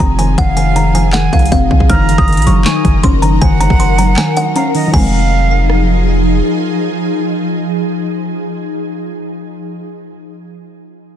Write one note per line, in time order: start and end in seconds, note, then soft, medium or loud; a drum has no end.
0.00 0.36 F1 loud
0.00 0.18 D#3 medium
0.00 0.38 F3 medium
0.00 1.87 F3 medium
0.00 0.95 C4 loud
0.00 4.90 D#4 medium
0.00 1.87 G#4 medium
0.00 0.15 A#5 medium
0.19 0.36 D#3 medium
0.19 0.34 G#5 medium
0.19 closed hi-hat medium
0.38 1.29 F1 loud
0.38 0.55 D#3 loud
0.38 1.10 F5 loud
0.38 0.53 F#5 loud
0.38 kick loud
0.38 closed hi-hat medium
0.57 0.75 D#3 medium
0.57 0.72 G#5 medium
0.57 closed hi-hat loud
0.76 1.13 D#3 medium
0.76 0.91 A#5 medium
0.76 closed hi-hat medium
0.95 1.90 F3 medium
0.95 1.10 G#5 medium
0.95 closed hi-hat medium
1.13 1.32 D#3 loud
1.13 1.28 F#5 medium
1.13 1.50 G#5 medium
1.13 snare loud
1.13 clap loud
1.13 closed hi-hat medium
1.33 1.51 C2 loud
1.33 1.70 D#3 medium
1.33 1.48 F5 medium
1.33 kick loud
1.33 closed hi-hat soft
1.39 closed hi-hat medium
1.46 closed hi-hat medium
1.52 1.70 F1 loud
1.52 1.90 C4 loud
1.52 1.88 F5 medium
1.52 kick loud
1.52 closed hi-hat medium
1.71 1.89 C2 loud
1.71 1.88 D#3 medium
1.71 kick medium
1.80 kick medium
1.90 2.17 F#1 loud
1.90 2.08 D#3 medium
1.90 4.91 F#3 medium
1.90 4.91 A#4 medium
1.90 2.62 A#5 loud
1.90 2.16 F6 loud
1.90 kick loud
1.90 closed hi-hat medium
2.09 2.27 D#3 medium
2.09 closed hi-hat loud
2.18 2.39 F#1 loud
2.18 2.45 D#6 medium
2.18 kick loud
2.28 2.65 D#3 medium
2.28 closed hi-hat soft
2.33 closed hi-hat medium
2.37 2.46 A#1 loud
2.37 closed hi-hat medium
2.42 closed hi-hat medium
2.47 2.65 F#1 loud
2.47 3.42 F#3 medium
2.47 2.62 C#6 medium
2.47 closed hi-hat medium
2.65 2.84 D#3 medium
2.65 3.01 G#5 medium
2.65 3.02 C#6 medium
2.65 snare loud
2.65 clap loud
2.65 closed hi-hat medium
2.85 3.03 F#1 loud
2.85 3.21 D#3 medium
2.85 kick loud
2.85 closed hi-hat medium
3.03 3.40 F#1 loud
3.03 3.99 C#4 medium
3.03 3.19 C6 medium
3.03 kick loud
3.03 closed hi-hat medium
3.22 3.40 D#3 medium
3.22 3.37 A#5 medium
3.22 closed hi-hat medium
3.42 3.69 F#1 loud
3.42 3.60 D#3 loud
3.42 4.52 F#5 loud
3.42 3.57 G#5 medium
3.42 kick loud
3.42 closed hi-hat medium
3.61 3.78 D#3 medium
3.61 3.76 A#5 medium
3.61 closed hi-hat loud
3.70 4.16 F#1 loud
3.70 kick loud
3.80 4.16 D#3 medium
3.80 3.95 C6 medium
3.80 closed hi-hat medium
3.98 4.94 F#3 medium
3.98 4.13 A#5 medium
3.98 closed hi-hat medium
4.17 4.35 D#3 medium
4.17 4.33 G#5 medium
4.17 snare loud
4.17 clap loud
4.17 closed hi-hat medium
4.36 4.73 D#3 medium
4.36 4.52 F#5 medium
4.36 closed hi-hat medium
4.56 4.94 C#4 medium
4.56 4.74 F5 medium
4.56 4.92 A#5 medium
4.56 closed hi-hat medium
4.75 4.86 D#3 medium
4.75 4.93 D#5 medium
4.75 open hi-hat medium
4.88 8.84 D#3 medium
4.88 8.88 F3 medium
4.94 6.41 F1 loud
4.94 8.73 F3 medium
4.94 8.92 G#3 medium
4.94 8.73 D#4 medium
4.94 8.73 G#4 medium
4.94 6.04 F5 loud
4.94 6.04 G#5 medium
4.94 kick loud
4.94 crash medium
5.00 8.96 C4 loud
5.70 cross-stick medium